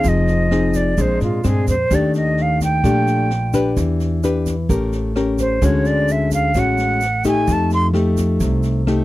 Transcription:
0.00 0.93 F1 medium
0.00 0.47 C4 medium
0.00 0.47 D#4 medium
0.00 0.48 G#4 medium
0.00 shaker medium
0.04 0.95 F3 medium
0.04 kick medium
0.04 snare soft
0.08 0.78 D#5 medium
0.27 snare soft
0.27 shaker soft
0.51 0.96 C4 soft
0.51 0.96 D#4 medium
0.51 0.96 G#4 medium
0.51 cross-stick medium
0.51 snare soft
0.74 1.03 D5 medium
0.74 kick soft
0.74 snare soft
0.74 shaker medium
0.97 1.19 A#1 medium
0.97 1.88 A#2 medium
0.97 1.41 G#3 medium
0.97 1.41 C4 medium
0.97 1.41 D4 medium
0.97 1.23 C5 medium
0.97 kick medium
0.97 snare soft
0.97 shaker medium
1.21 1.42 G#2 medium
1.21 1.48 F4 soft
1.21 snare soft
1.21 shaker soft
1.44 1.65 G2 medium
1.44 1.74 G#3 medium
1.44 1.74 C4 medium
1.44 1.74 D4 medium
1.44 1.69 G#4 medium
1.44 cross-stick medium
1.44 snare soft
1.44 shaker medium
1.67 1.88 F2 medium
1.67 1.96 C5 medium
1.67 kick soft
1.67 snare soft
1.67 shaker medium
1.91 2.80 D#2 medium
1.91 2.82 D#3 medium
1.91 2.80 A3 medium
1.91 2.80 D4 medium
1.91 2.81 G4 medium
1.91 kick medium
1.91 cross-stick medium
1.91 snare soft
1.91 shaker medium
1.95 2.16 D5 medium
2.14 2.43 D#5 medium
2.14 snare soft
2.14 shaker soft
2.37 snare soft
2.42 2.63 F5 medium
2.60 3.74 G5 medium
2.60 kick soft
2.60 snare soft
2.60 shaker medium
2.84 3.73 A#1 medium
2.84 3.75 A#2 medium
2.84 3.30 A3 medium
2.84 3.31 D4 medium
2.84 3.31 G4 medium
2.84 kick medium
2.84 cross-stick medium
2.84 snare soft
2.84 shaker medium
3.07 snare soft
3.07 shaker soft
3.30 snare soft
3.53 4.19 D4 medium
3.53 4.20 G4 medium
3.53 4.20 B4 medium
3.53 kick soft
3.53 cross-stick medium
3.53 snare soft
3.53 shaker medium
3.77 4.65 E2 medium
3.77 4.67 E3 medium
3.77 kick medium
3.77 snare soft
3.77 shaker medium
4.00 snare soft
4.00 shaker soft
4.23 4.55 D4 medium
4.23 4.55 G4 medium
4.23 4.55 B4 medium
4.23 cross-stick medium
4.23 snare soft
4.23 shaker medium
4.46 kick soft
4.46 snare soft
4.46 shaker medium
4.69 5.58 A1 medium
4.69 5.60 A3 medium
4.69 5.12 C#4 medium
4.69 5.12 G4 medium
4.69 5.12 A#4 medium
4.69 kick medium
4.69 snare soft
4.69 shaker medium
4.92 snare soft
4.92 shaker soft
5.16 5.59 C#4 medium
5.16 5.59 G4 medium
5.16 5.59 A#4 medium
5.16 cross-stick medium
5.16 snare soft
5.38 5.66 C5 medium
5.38 kick soft
5.38 snare soft
5.38 shaker medium
5.62 6.51 D2 loud
5.62 6.53 D3 medium
5.62 6.51 G#3 medium
5.62 6.51 C#4 medium
5.62 6.52 F#4 medium
5.62 5.88 C#5 medium
5.62 kick medium
5.62 cross-stick medium
5.62 snare soft
5.62 shaker medium
5.85 6.13 D5 loud
5.85 snare soft
5.85 shaker soft
6.08 6.33 E5 medium
6.08 snare soft
6.08 shaker medium
6.31 6.61 F5 medium
6.31 kick soft
6.31 snare soft
6.31 shaker medium
6.54 7.44 A1 medium
6.54 7.46 A2 medium
6.54 7.02 G#3 medium
6.54 7.02 C#4 medium
6.54 7.02 F#4 medium
6.54 kick medium
6.54 cross-stick medium
6.54 snare soft
6.54 shaker medium
6.59 7.27 F#5 medium
6.78 snare soft
6.78 shaker soft
7.01 snare soft
7.01 shaker medium
7.24 7.91 A3 medium
7.24 7.91 D#4 medium
7.24 7.91 G4 medium
7.24 7.54 G#5 loud
7.24 kick soft
7.24 cross-stick medium
7.24 snare soft
7.24 shaker medium
7.47 8.37 F2 loud
7.47 8.38 F3 medium
7.47 kick medium
7.47 snare soft
7.47 shaker medium
7.53 7.73 A5 medium
7.71 7.87 C6 loud
7.71 snare soft
7.71 shaker soft
7.94 8.83 A3 medium
7.94 8.83 D#4 medium
7.94 8.83 G4 medium
7.94 cross-stick medium
7.94 snare soft
8.17 kick soft
8.17 snare soft
8.17 shaker medium
8.40 9.04 C2 medium
8.40 9.04 C3 medium
8.40 kick medium
8.40 snare soft
8.40 shaker medium
8.63 snare soft
8.63 shaker soft
8.87 9.04 A3 medium
8.87 9.04 D#4 medium
8.87 9.04 G4 medium
8.87 cross-stick medium
8.87 snare soft

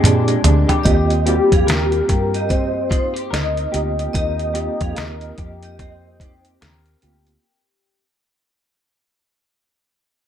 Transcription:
0.00 0.96 A#2 medium
0.00 0.36 A#2 medium
0.00 0.27 G#3 medium
0.00 0.72 C4 medium
0.00 0.72 D4 medium
0.00 0.68 G4 medium
0.00 0.72 G4 loud
0.00 0.71 G#4 medium
0.00 0.39 D5 loud
0.00 mid tom loud
0.05 0.44 D4 medium
0.05 closed hi-hat medium
0.28 0.95 G#3 medium
0.28 closed hi-hat soft
0.44 0.64 D2 medium
0.44 0.95 D4 medium
0.44 closed hi-hat medium
0.44 floor tom loud
0.68 1.26 G4 medium
0.68 closed hi-hat soft
0.68 floor tom medium
0.84 1.38 D#2 loud
0.84 1.21 A#3 medium
0.84 1.22 C4 medium
0.84 1.22 F4 medium
0.84 1.24 G4 medium
0.84 1.23 G4 medium
0.84 1.23 D#5 medium
0.84 kick loud
0.84 closed hi-hat medium
1.10 closed hi-hat soft
1.26 2.71 A#3 medium
1.26 2.72 C4 medium
1.26 2.72 F4 medium
1.26 1.35 F#4 medium
1.26 2.07 G4 medium
1.26 2.10 G4 loud
1.26 closed hi-hat medium
1.35 2.76 G4 medium
1.52 1.65 F2 medium
1.52 1.67 G#4 medium
1.52 1.67 F5 medium
1.52 kick medium
1.52 closed hi-hat medium
1.67 2.00 D#2 medium
1.67 3.30 A#4 medium
1.67 1.91 A#4 medium
1.67 1.91 G5 medium
1.67 snare loud
1.67 closed hi-hat medium
1.92 closed hi-hat soft
2.08 3.28 G2 medium
2.08 2.90 G4 medium
2.08 2.51 A#4 medium
2.08 kick medium
2.08 closed hi-hat medium
2.34 2.49 G4 medium
2.34 2.48 D#5 medium
2.34 closed hi-hat soft
2.49 5.79 C4 medium
2.49 2.89 G4 medium
2.49 3.34 C5 loud
2.49 2.88 D#5 medium
2.49 kick medium
2.49 closed hi-hat medium
2.90 3.14 D#4 medium
2.90 3.14 F4 medium
2.90 3.13 C5 medium
2.90 kick medium
2.90 closed hi-hat medium
3.14 3.71 G4 soft
3.14 closed hi-hat soft
3.31 3.65 D2 medium
3.31 4.96 A#4 medium
3.31 3.73 D#5 loud
3.31 snare loud
3.31 closed hi-hat medium
3.57 closed hi-hat soft
3.72 4.07 D2 medium
3.72 4.09 A#3 medium
3.72 4.09 C4 medium
3.72 4.10 F4 medium
3.72 4.53 G4 medium
3.72 4.10 G4 medium
3.72 6.58 D#5 loud
3.72 closed hi-hat medium
3.99 closed hi-hat soft
4.13 4.67 D#2 loud
4.13 4.50 A#3 medium
4.13 4.50 C4 medium
4.13 4.51 F4 medium
4.13 4.53 G4 medium
4.13 4.51 A#4 medium
4.13 4.53 D#5 medium
4.13 kick medium
4.13 closed hi-hat medium
4.39 closed hi-hat soft
4.54 6.00 A#3 medium
4.54 6.00 C4 medium
4.54 6.01 F4 medium
4.54 5.38 G4 medium
4.54 6.01 G4 medium
4.54 closed hi-hat medium
4.81 4.94 F2 medium
4.81 4.97 G#4 medium
4.81 4.96 F5 medium
4.81 kick medium
4.81 closed hi-hat medium
4.96 5.30 D#2 medium
4.96 6.61 A#4 medium
4.96 5.21 A#4 medium
4.96 5.20 G5 medium
4.96 snare loud
4.96 closed hi-hat medium
5.21 closed hi-hat soft
5.38 6.57 F2 medium
5.38 6.21 G4 medium
5.38 kick medium
5.38 closed hi-hat medium
5.63 5.78 G4 medium
5.63 5.78 D#5 medium
5.63 closed hi-hat soft
5.79 8.04 C4 medium
5.79 6.18 G4 medium
5.79 6.18 D#5 medium
5.79 kick medium
5.79 closed hi-hat medium
6.20 6.44 D#4 medium
6.20 7.02 G4 soft
6.20 6.43 C5 medium
6.20 kick medium
6.20 closed hi-hat medium
6.45 closed hi-hat soft
6.61 6.95 D#2 medium
6.61 8.03 A#4 medium
6.61 snare loud
6.61 closed hi-hat medium
6.86 closed hi-hat soft
7.02 7.36 D2 medium
7.02 7.39 A#3 medium
7.02 7.39 C4 medium
7.02 7.39 F4 medium
7.02 8.03 G4 soft
7.02 7.40 G4 medium
7.02 closed hi-hat medium
7.27 closed hi-hat soft

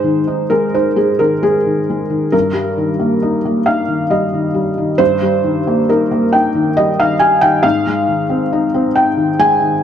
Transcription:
0.00 2.29 G#2 medium
0.00 0.41 D#3 soft
0.00 0.18 G#3 soft
0.00 0.50 C5 medium
0.27 0.65 D#4 soft
0.50 0.87 G#3 soft
0.50 0.73 A#4 medium
0.74 1.11 D#4 soft
0.74 0.97 C5 medium
0.96 1.33 G#3 soft
0.96 1.19 G#4 medium
1.19 1.56 D#3 soft
1.19 1.42 A#4 medium
1.43 1.79 G#3 soft
1.43 2.33 G#4 medium
1.66 2.02 D#3 soft
1.90 2.25 G#3 soft
2.10 2.33 D#3 soft
2.32 4.96 G2 medium
2.32 3.67 A#4 medium
2.53 2.90 G3 soft
2.78 3.14 D#3 soft
2.99 3.36 A#3 soft
3.22 3.58 D#4 soft
3.45 3.81 A#3 soft
3.66 4.02 D#4 soft
3.66 4.11 F5 medium
3.88 4.24 D#3 soft
4.10 4.46 G3 soft
4.10 4.99 D#5 medium
4.34 4.69 D#3 soft
4.54 4.90 G3 soft
4.78 5.13 D#3 soft
4.98 7.59 G2 medium
4.98 5.88 C5 medium
5.22 5.57 G3 soft
5.44 5.79 D#3 soft
5.67 6.02 A#3 soft
5.89 6.25 D#4 soft
5.89 6.33 A#4 medium
6.11 6.47 A#3 soft
6.33 6.68 D#4 soft
6.33 6.77 G5 medium
6.55 6.90 D#3 soft
6.77 7.12 G3 soft
6.77 6.99 D#5 medium
6.99 7.34 D#3 soft
6.99 7.21 F5 medium
7.19 7.55 G3 soft
7.19 7.42 G#5 medium
7.41 7.64 D#3 soft
7.41 7.63 G5 medium
7.63 9.83 G#2 medium
7.63 8.94 F5 medium
7.87 8.21 G#3 soft
8.08 8.43 D#3 soft
8.29 8.64 C4 soft
8.53 8.87 D#4 medium
8.74 9.08 C4 medium
8.96 9.30 D#4 soft
8.96 9.38 G5 medium
9.17 9.52 D#3 soft
9.39 9.74 G#3 soft
9.39 9.83 G#5 medium
9.60 9.83 D#3 medium

